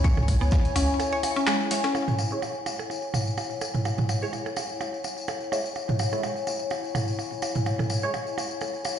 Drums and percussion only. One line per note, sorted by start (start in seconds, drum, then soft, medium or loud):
0.04 kick loud
0.04 closed hi-hat medium
0.04 tambourine medium
0.04 percussion blips medium
0.17 mid tom loud
0.17 tambourine soft
0.17 percussion blips medium
0.28 kick medium
0.28 open hi-hat medium
0.28 tambourine medium
0.28 percussion blips soft
0.42 tambourine soft
0.51 kick loud
0.51 snare loud
0.51 closed hi-hat medium
0.51 tambourine medium
0.51 percussion blips medium
0.65 closed hi-hat soft
0.65 tambourine soft
0.76 open hi-hat medium
0.76 tambourine medium
0.76 percussion blips medium
0.89 tambourine soft
1.00 closed hi-hat medium
1.00 tambourine soft
1.00 percussion blips medium
1.00 percussion blips soft
1.12 tambourine soft
1.23 open hi-hat medium
1.23 tambourine medium
1.23 percussion blips medium
1.36 closed hi-hat soft
1.36 tambourine soft
1.47 snare loud
1.47 clap loud
1.47 closed hi-hat medium
1.47 tambourine medium
1.47 percussion blips medium
1.60 tambourine soft
1.71 snare loud
1.71 closed hi-hat medium
1.71 open hi-hat medium
1.71 tambourine loud
1.71 percussion blips soft
1.84 snare loud
1.84 closed hi-hat medium
1.84 tambourine soft
1.84 percussion blips medium
1.95 tambourine medium
1.95 percussion blips medium
2.08 mid tom medium
2.08 tambourine soft
2.19 tambourine medium
2.19 percussion blips soft
2.31 tambourine soft
2.42 tambourine soft
2.42 percussion blips medium
2.55 tambourine soft
2.66 tambourine medium
2.66 percussion blips medium
2.79 tambourine soft
2.79 percussion blips medium
2.90 tambourine soft
2.90 percussion blips soft
3.02 tambourine soft
3.14 mid tom medium
3.14 tambourine medium
3.14 percussion blips medium
3.27 tambourine soft
3.38 tambourine soft
3.38 percussion blips medium
3.51 tambourine soft
3.61 tambourine medium
3.61 percussion blips medium
3.61 percussion blips soft
3.75 mid tom medium
3.75 tambourine soft
3.85 tambourine medium
3.85 percussion blips medium
3.98 mid tom medium
3.98 tambourine soft
4.09 tambourine medium
4.09 percussion blips medium
4.22 tambourine soft
4.33 tambourine soft
4.33 percussion blips soft
4.46 tambourine soft
4.46 percussion blips medium
4.56 tambourine medium
4.56 percussion blips medium
4.69 tambourine soft
4.81 tambourine medium
4.81 percussion blips medium
4.94 tambourine soft
5.04 tambourine medium
5.04 percussion blips soft
5.18 tambourine soft
5.28 tambourine soft
5.28 percussion blips medium
5.41 tambourine soft
5.52 tambourine medium
5.52 percussion blips medium
5.66 tambourine soft
5.75 tambourine soft
5.75 percussion blips soft
5.89 mid tom medium
5.89 tambourine soft
5.99 tambourine medium
5.99 percussion blips medium
6.13 tambourine soft
6.13 percussion blips medium
6.23 tambourine soft
6.23 percussion blips medium
6.36 tambourine soft
6.47 tambourine medium
6.47 percussion blips soft
6.59 tambourine soft
6.70 tambourine medium
6.70 percussion blips medium
6.84 tambourine soft
6.95 mid tom medium
6.95 tambourine medium
6.95 percussion blips medium
7.08 tambourine soft
7.19 tambourine soft
7.19 percussion blips soft
7.32 tambourine soft
7.42 tambourine medium
7.42 percussion blips medium
7.55 mid tom medium
7.55 tambourine soft
7.66 tambourine soft
7.66 percussion blips medium
7.79 mid tom medium
7.79 tambourine soft
7.79 percussion blips medium
7.90 tambourine medium
7.90 percussion blips soft
8.03 tambourine soft
8.14 tambourine medium
8.14 percussion blips medium
8.27 tambourine soft
8.38 tambourine medium
8.38 percussion blips medium
8.51 tambourine soft
8.61 tambourine soft
8.61 percussion blips medium
8.61 percussion blips soft
8.74 tambourine soft
8.85 tambourine medium
8.85 percussion blips medium